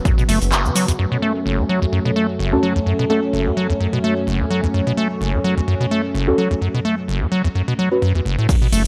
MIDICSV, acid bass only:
0, 0, Header, 1, 2, 480
1, 0, Start_track
1, 0, Key_signature, 3, "minor"
1, 0, Tempo, 468750
1, 1014, Time_signature, 4, 2, 24, 8
1, 9084, End_track
2, 0, Start_track
2, 0, Title_t, "Acid bass"
2, 0, Program_c, 0, 38
2, 54, Note_on_c, 0, 42, 82
2, 126, Note_off_c, 0, 42, 0
2, 184, Note_on_c, 0, 47, 76
2, 244, Note_off_c, 0, 47, 0
2, 293, Note_on_c, 0, 57, 76
2, 402, Note_off_c, 0, 57, 0
2, 534, Note_on_c, 0, 30, 98
2, 664, Note_on_c, 0, 42, 79
2, 680, Note_off_c, 0, 30, 0
2, 724, Note_off_c, 0, 42, 0
2, 773, Note_on_c, 0, 54, 74
2, 882, Note_off_c, 0, 54, 0
2, 905, Note_on_c, 0, 40, 98
2, 941, Note_off_c, 0, 40, 0
2, 1014, Note_on_c, 0, 42, 81
2, 1086, Note_off_c, 0, 42, 0
2, 1145, Note_on_c, 0, 47, 74
2, 1205, Note_off_c, 0, 47, 0
2, 1253, Note_on_c, 0, 57, 75
2, 1362, Note_off_c, 0, 57, 0
2, 1493, Note_on_c, 0, 30, 92
2, 1625, Note_on_c, 0, 42, 72
2, 1640, Note_off_c, 0, 30, 0
2, 1685, Note_off_c, 0, 42, 0
2, 1734, Note_on_c, 0, 54, 75
2, 1842, Note_off_c, 0, 54, 0
2, 1864, Note_on_c, 0, 40, 95
2, 1901, Note_off_c, 0, 40, 0
2, 1972, Note_on_c, 0, 42, 80
2, 2045, Note_off_c, 0, 42, 0
2, 2104, Note_on_c, 0, 47, 72
2, 2164, Note_off_c, 0, 47, 0
2, 2213, Note_on_c, 0, 57, 72
2, 2322, Note_off_c, 0, 57, 0
2, 2452, Note_on_c, 0, 30, 95
2, 2583, Note_on_c, 0, 42, 71
2, 2599, Note_off_c, 0, 30, 0
2, 2644, Note_off_c, 0, 42, 0
2, 2692, Note_on_c, 0, 54, 71
2, 2801, Note_off_c, 0, 54, 0
2, 2823, Note_on_c, 0, 40, 94
2, 2860, Note_off_c, 0, 40, 0
2, 2932, Note_on_c, 0, 42, 81
2, 3005, Note_off_c, 0, 42, 0
2, 3064, Note_on_c, 0, 47, 75
2, 3124, Note_off_c, 0, 47, 0
2, 3173, Note_on_c, 0, 57, 72
2, 3282, Note_off_c, 0, 57, 0
2, 3414, Note_on_c, 0, 30, 96
2, 3545, Note_on_c, 0, 42, 73
2, 3561, Note_off_c, 0, 30, 0
2, 3605, Note_off_c, 0, 42, 0
2, 3655, Note_on_c, 0, 54, 74
2, 3763, Note_off_c, 0, 54, 0
2, 3785, Note_on_c, 0, 40, 102
2, 3821, Note_off_c, 0, 40, 0
2, 3895, Note_on_c, 0, 42, 77
2, 3967, Note_off_c, 0, 42, 0
2, 4025, Note_on_c, 0, 47, 75
2, 4085, Note_off_c, 0, 47, 0
2, 4136, Note_on_c, 0, 57, 75
2, 4243, Note_off_c, 0, 57, 0
2, 4374, Note_on_c, 0, 30, 96
2, 4505, Note_on_c, 0, 42, 75
2, 4521, Note_off_c, 0, 30, 0
2, 4565, Note_off_c, 0, 42, 0
2, 4613, Note_on_c, 0, 54, 71
2, 4722, Note_off_c, 0, 54, 0
2, 4746, Note_on_c, 0, 40, 92
2, 4781, Note_off_c, 0, 40, 0
2, 4855, Note_on_c, 0, 42, 80
2, 4927, Note_off_c, 0, 42, 0
2, 4985, Note_on_c, 0, 47, 71
2, 5045, Note_off_c, 0, 47, 0
2, 5094, Note_on_c, 0, 57, 73
2, 5202, Note_off_c, 0, 57, 0
2, 5334, Note_on_c, 0, 30, 93
2, 5464, Note_on_c, 0, 42, 72
2, 5480, Note_off_c, 0, 30, 0
2, 5524, Note_off_c, 0, 42, 0
2, 5575, Note_on_c, 0, 54, 74
2, 5683, Note_off_c, 0, 54, 0
2, 5706, Note_on_c, 0, 40, 99
2, 5742, Note_off_c, 0, 40, 0
2, 5814, Note_on_c, 0, 42, 80
2, 5886, Note_off_c, 0, 42, 0
2, 5944, Note_on_c, 0, 47, 74
2, 6004, Note_off_c, 0, 47, 0
2, 6055, Note_on_c, 0, 57, 74
2, 6163, Note_off_c, 0, 57, 0
2, 6294, Note_on_c, 0, 30, 93
2, 6425, Note_on_c, 0, 42, 75
2, 6441, Note_off_c, 0, 30, 0
2, 6485, Note_off_c, 0, 42, 0
2, 6534, Note_on_c, 0, 54, 72
2, 6642, Note_off_c, 0, 54, 0
2, 6665, Note_on_c, 0, 40, 96
2, 6701, Note_off_c, 0, 40, 0
2, 6774, Note_on_c, 0, 42, 80
2, 6846, Note_off_c, 0, 42, 0
2, 6906, Note_on_c, 0, 47, 75
2, 6965, Note_off_c, 0, 47, 0
2, 7014, Note_on_c, 0, 57, 73
2, 7122, Note_off_c, 0, 57, 0
2, 7253, Note_on_c, 0, 30, 96
2, 7384, Note_on_c, 0, 42, 72
2, 7400, Note_off_c, 0, 30, 0
2, 7444, Note_off_c, 0, 42, 0
2, 7492, Note_on_c, 0, 54, 77
2, 7601, Note_off_c, 0, 54, 0
2, 7624, Note_on_c, 0, 40, 99
2, 7660, Note_off_c, 0, 40, 0
2, 7733, Note_on_c, 0, 42, 80
2, 7806, Note_off_c, 0, 42, 0
2, 7864, Note_on_c, 0, 47, 76
2, 7925, Note_off_c, 0, 47, 0
2, 7975, Note_on_c, 0, 54, 75
2, 8083, Note_off_c, 0, 54, 0
2, 8214, Note_on_c, 0, 42, 97
2, 8322, Note_off_c, 0, 42, 0
2, 8344, Note_on_c, 0, 40, 72
2, 8404, Note_off_c, 0, 40, 0
2, 8453, Note_on_c, 0, 30, 93
2, 8562, Note_off_c, 0, 30, 0
2, 8585, Note_on_c, 0, 45, 71
2, 8675, Note_off_c, 0, 45, 0
2, 8693, Note_on_c, 0, 42, 88
2, 8765, Note_off_c, 0, 42, 0
2, 8824, Note_on_c, 0, 47, 79
2, 8884, Note_off_c, 0, 47, 0
2, 8934, Note_on_c, 0, 57, 76
2, 9042, Note_off_c, 0, 57, 0
2, 9084, End_track
0, 0, End_of_file